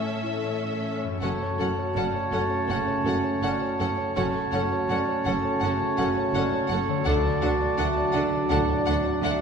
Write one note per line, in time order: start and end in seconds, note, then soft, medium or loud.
0.00 0.98 A2 soft
0.00 1.24 A2 soft
0.00 1.26 A2 soft
0.00 1.25 E3 soft
0.00 0.98 C#4 soft
0.00 1.00 C#4 soft
0.00 1.07 C#4 soft
0.00 0.23 E4 soft
0.00 0.21 A4 soft
0.00 0.73 A4 soft
0.00 0.98 A4 soft
0.00 0.45 C#5 soft
0.00 0.48 C#5 soft
0.00 0.71 E5 soft
0.00 0.97 E5 soft
0.22 0.63 E4 soft
0.22 1.16 A4 soft
0.46 0.96 C#5 soft
0.46 0.88 C#5 soft
0.72 1.13 A4 soft
0.72 1.25 E5 soft
0.97 1.23 C#4 soft
0.97 4.87 C#5 soft
1.03 4.93 F#2 soft
1.08 4.98 C#4 soft
1.13 5.03 F#4 soft
1.17 5.07 A4 soft
1.17 1.29 F#5 soft
1.21 1.31 F#1 medium
1.21 1.29 F#2 soft
1.21 2.66 F#2 soft
1.21 4.13 A3 medium
1.21 1.32 C#4 soft
1.21 4.13 C#4 medium
1.21 4.12 F#4 soft
1.21 1.30 A4 soft
1.21 4.12 C#5 medium
1.21 4.12 A5 medium
1.43 1.71 C#5 soft
1.58 1.67 F#1 soft
1.58 1.67 F#2 soft
1.58 1.67 C#4 soft
1.58 1.89 F#4 soft
1.58 1.66 A4 soft
1.58 1.68 F#5 soft
1.79 2.07 C#5 soft
1.96 2.04 F#1 medium
1.96 2.04 F#2 medium
1.96 2.04 C#4 soft
1.96 2.04 A4 soft
1.96 2.14 D5 soft
1.96 2.05 F#5 soft
2.15 2.44 C#5 soft
2.32 2.40 F#1 soft
2.32 2.40 F#2 medium
2.32 2.41 C#4 soft
2.32 2.40 A4 soft
2.32 2.62 A4 soft
2.32 2.41 F#5 soft
2.50 2.80 C#5 soft
2.68 2.77 F#1 medium
2.68 2.76 F#2 medium
2.68 2.98 C#3 soft
2.68 2.77 C#4 soft
2.68 2.76 A4 soft
2.68 2.78 F#5 soft
2.88 3.17 C#5 soft
3.04 3.14 F#1 medium
3.04 3.13 F#2 medium
3.04 3.15 C#4 soft
3.04 3.35 F#4 soft
3.04 3.12 A4 soft
3.04 3.15 F#5 soft
3.24 3.53 C#5 soft
3.41 3.51 F#1 medium
3.41 3.49 F#2 soft
3.41 3.52 C#4 soft
3.41 3.50 A4 soft
3.41 3.61 D5 soft
3.41 3.51 F#5 medium
3.62 3.91 C#5 soft
3.79 3.89 F#1 soft
3.79 3.87 F#2 soft
3.79 3.89 C#4 soft
3.79 4.09 A4 soft
3.79 3.87 A4 medium
3.79 3.88 F#5 soft
3.98 4.27 C#5 soft
4.16 4.25 F#1 medium
4.16 4.24 F#2 soft
4.16 5.58 F#2 soft
4.16 7.03 A3 medium
4.16 4.24 C#4 medium
4.16 7.03 C#4 medium
4.16 7.03 F#4 medium
4.16 4.24 A4 medium
4.16 7.09 C#5 medium
4.16 4.25 F#5 medium
4.16 7.03 A5 medium
4.35 4.64 A4 soft
4.53 4.61 F#1 medium
4.53 4.61 F#2 medium
4.53 4.62 C#4 soft
4.53 4.82 F#4 soft
4.53 4.62 A4 soft
4.53 4.61 F#5 soft
4.72 5.01 C#5 soft
4.88 4.97 F#1 medium
4.88 4.96 F#2 medium
4.88 4.99 C#4 soft
4.88 4.98 A4 soft
4.88 5.08 D5 soft
4.88 4.98 F#5 medium
5.09 5.37 C#5 soft
5.24 5.34 F#1 medium
5.24 5.32 F#2 medium
5.24 5.34 C#4 soft
5.24 5.35 A4 soft
5.24 5.55 A4 soft
5.24 5.33 F#5 soft
5.45 5.73 C#5 soft
5.60 5.71 F#1 medium
5.60 5.69 F#2 medium
5.60 5.71 C#4 soft
5.60 5.71 A4 soft
5.60 5.68 F#5 medium
5.65 5.92 C#3 soft
5.82 6.10 C#5 soft
5.97 6.06 F#1 medium
5.97 6.05 F#2 medium
5.97 6.07 C#4 soft
5.97 6.28 F#4 soft
5.97 6.07 A4 soft
5.97 6.06 F#5 medium
6.17 6.46 C#5 soft
6.33 6.42 F#1 medium
6.33 6.41 F#2 soft
6.33 6.44 C#4 soft
6.33 6.43 A4 medium
6.33 6.42 F#5 medium
6.54 6.82 C#5 soft
6.69 6.78 F#1 medium
6.69 6.78 F#2 medium
6.69 6.79 C#4 soft
6.69 7.00 A4 soft
6.69 6.80 A4 medium
6.69 6.77 F#5 soft
6.88 9.41 D3 soft
6.88 7.07 C#5 soft
6.93 9.41 D4 soft
6.97 9.41 F#4 soft
7.01 7.13 D3 medium
7.01 9.41 D4 medium
7.01 9.41 A4 soft
7.01 7.13 F#5 medium
7.06 7.14 D2 medium
7.06 8.48 D2 medium
7.06 9.41 F#3 medium
7.06 7.15 D4 medium
7.06 9.41 F#4 medium
7.06 7.14 A4 medium
7.06 9.41 D5 medium
7.06 9.41 A5 medium
7.25 7.54 D5 soft
7.42 7.50 D2 medium
7.42 7.50 D3 medium
7.42 7.51 D4 medium
7.42 7.71 F#4 soft
7.42 7.50 A4 soft
7.42 7.50 F#5 soft
7.61 7.90 D5 medium
7.78 7.86 D2 medium
7.78 7.86 D3 medium
7.78 7.88 D4 soft
7.78 7.86 A4 soft
7.78 7.98 E5 soft
7.78 7.86 F#5 medium
7.97 8.26 D5 medium
8.13 8.22 D2 medium
8.13 8.22 D3 medium
8.13 8.22 D4 medium
8.13 8.21 A4 soft
8.13 8.44 A4 soft
8.13 8.21 F#5 soft
8.34 8.62 D5 medium
8.50 8.59 D2 medium
8.50 8.80 A2 soft
8.50 8.58 D3 medium
8.50 8.58 D4 medium
8.50 8.58 A4 medium
8.50 8.58 F#5 medium
8.69 8.98 D5 medium
8.86 8.96 D2 medium
8.86 8.94 D3 medium
8.86 8.96 D4 medium
8.86 9.16 F#4 soft
8.86 8.96 A4 medium
8.86 8.94 F#5 medium
9.05 9.34 D5 medium
9.22 9.32 D2 medium
9.22 9.30 D3 medium
9.22 9.32 D4 medium
9.22 9.32 A4 medium
9.22 9.41 E5 soft
9.22 9.31 F#5 medium